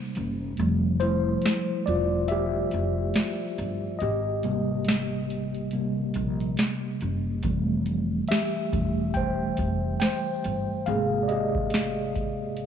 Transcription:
Already playing: tine electric piano C3 G3 A#3
0.15 upright bass F#1, closed hi-hat
0.57 upright bass F1, tine electric piano F3 G3 A3, closed hi-hat
1.00 tine electric piano E4 C5, closed hi-hat
1.42 snare, closed hi-hat
1.86 upright bass E1, tine electric piano F4 D5, closed hi-hat
2.28 tine electric piano G4 E5, closed hi-hat
2.71 upright bass F1, closed hi-hat
3.14 snare, closed hi-hat
3.58 upright bass G1, closed hi-hat
3.99 upright bass G#1, tine electric piano G4 D#5, closed hi-hat
4.43 tine electric piano C3 G3 A#3, closed hi-hat
4.85 snare, closed hi-hat
5.30 closed hi-hat
5.54 closed hi-hat
5.71 tine electric piano C3 G3 A#3, closed hi-hat
6.14 upright bass A#1, closed hi-hat
6.40 closed hi-hat
6.57 snare, closed hi-hat
7.01 upright bass F#1, closed hi-hat
7.43 upright bass F1, tine electric piano E3 G3 A3, kick, closed hi-hat
7.86 closed hi-hat
8.28 tine electric piano G4 E5, snare, closed hi-hat
8.73 upright bass E1, tine electric piano E3 G3 A3, kick, closed hi-hat
9.14 tine electric piano C5 G5, kick, closed hi-hat
9.57 upright bass F1, kick, closed hi-hat
10.00 tine electric piano C5 G5, snare, closed hi-hat
10.44 upright bass G1, closed hi-hat
10.86 upright bass G#1, tine electric piano C3 G#3 A#3 G#4 F5, closed hi-hat
11.23 tine electric piano D5
11.28 tine electric piano G4 D#5, closed hi-hat
11.55 kick
11.70 snare, closed hi-hat
12.16 kick, closed hi-hat
12.57 closed hi-hat

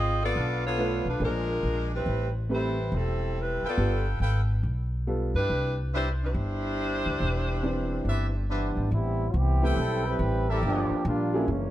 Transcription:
Already playing: upright bass G#1, saxophone section C4 F4 G#4 D#5
0.24 saxophone section B3 F4 A4 D5
0.35 upright bass B1, trumpet section D4 A4 B4 F5
0.65 saxophone section B3 F4 A4 C#5
0.78 upright piano A3 D4 F4 B4
1.05 upright bass B1, saxophone section A3 D4 B4
1.09 saxophone section F4
1.20 upright bass A#1, upright piano A#3 D4 G#4 C5
1.24 saxophone section G#3 D4 F4 A#4
1.63 upright bass A#1
1.95 saxophone section G3 C4 E4 B4
2.06 upright bass A1
2.49 upright piano A3 C4 G4 B4
2.54 saxophone section G3 E4 B4 C5
2.92 upright bass E1, saxophone section C4 A4
2.96 saxophone section G3 E4
3.39 saxophone section G3 C4 E4 B4
3.63 trumpet section A4 B4 F5 G5, muted upright bass stroke
3.68 saxophone section B3 F4 A4 D5
3.77 upright bass G1, upright piano G3 B3 F4 A4
4.20 upright bass G#1, trumpet section A4 B4 F5 G5
4.63 upright bass B1
5.07 upright piano G3 B3 F4 A4
5.34 upright bass G2, saxophone section G3 D4 E4 B4
5.50 upright bass C2
5.93 saxophone section G3 D4 E4 C5, trumpet section B4 C5 D5 E5
6.24 saxophone section G3 D4 E4 C5
6.34 upright bass G1
7.06 upright bass C#2
7.20 upright bass E1
7.63 upright piano E3 C4 D4 C5
8.05 upright bass G1, trumpet section B4 C5 D5 E5
8.49 trombone section E3 G3 B3 D4, trumpet section B4 C5 D5 E5
8.77 upright bass G#1
8.91 upright bass A1, trombone section G3 B3 C4 E4
9.34 upright bass C2, trombone section E3 B3 C4 G4
9.62 upright piano A3 C4 E4 G4 B4, trumpet section A4 B4 C5 G5
9.77 upright bass B1, trombone section G3 C4 E4 A4
10.06 trombone section G3 C4 E4 B4
10.19 upright bass A1
10.49 trombone section G3 C4 E4 A4, trumpet section G4 A#4 D5 E5
10.63 upright bass G1, trombone section F3 A#3 D4 G4
10.90 muted upright bass stroke
11.05 upright bass A#1, trombone section G3 A#3 D4 F4
11.33 upright piano F#3 A#3 C#4 E4 G#4
11.48 upright bass F#1, trombone section E3 G#3 A#3 C#4

